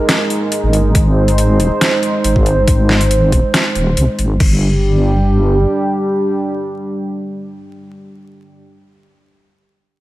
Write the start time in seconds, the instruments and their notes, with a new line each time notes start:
Already playing: analog synth pad G#3 D#4 A#4
0.09 snare, closed hi-hat
0.30 closed hi-hat
0.52 closed hi-hat
0.63 wobble bass G#1
0.73 closed hi-hat
0.95 wobble bass G#1, analog synth pad C5, kick, closed hi-hat
1.28 closed hi-hat
1.38 closed hi-hat
1.60 wobble bass D#1, closed hi-hat
1.81 snare, closed hi-hat
2.03 closed hi-hat
2.24 wobble bass G#1, closed hi-hat
2.36 kick
2.46 closed hi-hat
2.68 wobble bass G#1, kick, closed hi-hat
2.89 snare
3.01 closed hi-hat
3.11 closed hi-hat
3.32 wobble bass D#1, kick, closed hi-hat
3.54 snare, closed hi-hat
3.75 wobble bass D#1, closed hi-hat
3.97 wobble bass C2, closed hi-hat
4.19 wobble bass G#1, closed hi-hat
4.40 wobble bass G1, analog synth pad G3 D4 G4, kick, crash